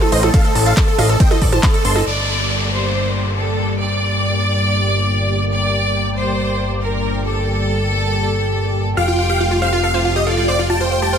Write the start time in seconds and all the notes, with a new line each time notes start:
Already playing: A3 A4 C5 D#5
0.01 A4, percussion blips
0.12 A1 C5 D#5, open hi-hat
0.23 A4, closed hi-hat, percussion blips
0.34 A4 F5, kick, closed hi-hat, ride
0.45 A4, closed hi-hat
0.55 A1 A4 A5, open hi-hat
0.66 A4 F5, closed hi-hat
0.77 A4 A5, kick, clap, closed hi-hat, ride
0.88 A4
0.98 A1 A4 D#5 F5, open hi-hat, percussion blips
1.09 A4, closed hi-hat
1.20 C5 D#5 G5, kick, closed hi-hat, ride
1.31 A4 D#5, closed hi-hat, percussion blips
1.42 A1 A4 D5, kick, open hi-hat
1.52 C5 A5, closed hi-hat, percussion blips
1.63 A4 A5, kick, clap, closed hi-hat, ride
1.74 A4, closed hi-hat
1.85 G1 A4 A5 C6, open hi-hat
1.96 A4 D#5, open hi-hat, percussion blips
2.06 G1 G3 A#3 G4 D5, downlifter
2.71 C5
3.36 A4
3.79 D5
5.52 D5
6.17 C5
6.81 A#4
7.24 A4
8.97 F1 A3 F4 F5 G5
9.08 F4
9.19 F4 F5
9.29 G4 F5
9.40 F4 F5
9.51 F4
9.62 C5 F5
9.72 F4
9.83 A4 F5
9.94 F4 C5
10.05 F4 F5
10.16 G4 D#5
10.26 F4 A4 D5
10.37 F4
10.48 C5 D5
10.59 F4
10.70 F4 G5 A5
10.80 F4 C5
10.91 C5 F5
11.02 G4 A5
11.13 C5 F5